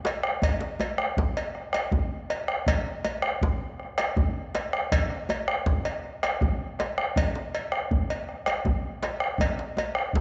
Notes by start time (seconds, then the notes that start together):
0.05 bombo rim, cowbell, djembe slap
0.23 bombo rim
0.42 bombo rim, bombo low, cowbell, djembe bass
0.61 djembe slap
0.80 cowbell, djembe tone
0.98 bombo rim, djembe slap
1.17 bombo low, djembe slap, djembe bass
1.37 cowbell
1.55 bombo rim
1.73 bombo rim, cowbell, djembe slap
1.91 bombo low, djembe tone, djembe bass
2.30 bombo rim, cowbell
2.48 bombo rim
2.66 bombo rim, bombo low, cowbell, djembe bass
3.04 cowbell, djembe tone
3.22 bombo rim, djembe slap
3.41 bombo low, djembe slap, djembe bass
3.80 bombo rim
3.98 bombo rim, cowbell, djembe slap
4.16 bombo low, djembe tone, djembe bass
4.55 bombo rim, cowbell, djembe slap
4.73 bombo rim
4.92 bombo low, cowbell, djembe slap, djembe bass
5.10 bombo rim
5.29 cowbell, djembe tone
5.48 bombo rim
5.66 bombo low, djembe slap, djembe bass
5.85 bombo rim, cowbell, djembe slap
6.04 djembe slap
6.23 bombo rim, cowbell, djembe slap
6.41 bombo rim, bombo low, djembe tone, djembe bass
6.79 bombo rim, cowbell, djembe slap
6.98 bombo rim, djembe slap
7.16 bombo rim, bombo low, cowbell, djembe bass
7.35 djembe slap
7.55 cowbell
7.72 bombo rim, djembe slap
7.91 bombo low, djembe bass
8.10 cowbell
8.29 bombo rim
8.46 bombo rim, cowbell, djembe slap
8.65 bombo low, djembe tone, djembe bass
9.02 bombo rim, cowbell, djembe slap
9.20 bombo rim
9.38 bombo rim, bombo low, cowbell, djembe bass
9.59 djembe slap
9.77 cowbell, djembe tone
9.95 bombo rim, djembe slap
10.13 bombo low, djembe slap, djembe bass